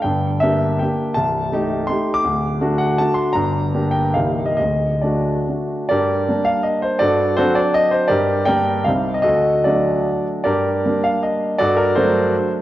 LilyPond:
<<
  \new Staff \with { instrumentName = "Grand piano" } { \time 3/4 \key g \dorian \tempo 4 = 158 g''4 e''4 g''4 | \key g \minor a''2 c'''8. d'''16~ | d'''4. fis''8 a''8 c'''8 | bes''4. g''8 f''8. ees''16 |
ees''4 d''4 r4 | <g' bes' d''>4. f''8 ees''8 c''8 | <fis' a' d''>4 <fis' a' c''>8 d''8 ees''8 c''8 | <g' bes' d''>4 <bes' d'' g''>4 f''8. ees''16 |
<fis' a' ees''>4 <fis' a' d''>4. r8 | <g' bes' d''>4. f''8 ees''4 | <fis' a' d''>8 bes'8 <fis' a' c''>4. r8 | }
  \new Staff \with { instrumentName = "Grand piano" } { \time 3/4 \key g \dorian <g,, g,>4 <bes d' g'>4 <bes d' g'>4 | \key g \minor <c,, c,>4 <a ees' g'>4 <a ees' g'>4 | <d,, d,>4 <a d' fis'>4 <a d' fis'>4 | <g,, g,>4 <bes d' g'>4 <c,, c, bes ees' g'>4 |
<d,, d,>4 <a d' fis'>4 <a d' fis'>4 | g,4 <g bes d'>2 | g,4 <fis c' d'>2 | g,4 <g bes d'>4 <c, g c' ees'>4 |
d,4 <fis a d'>2 | g,4 <g bes d'>2 | g,4 <fis a d'>2 | }
>>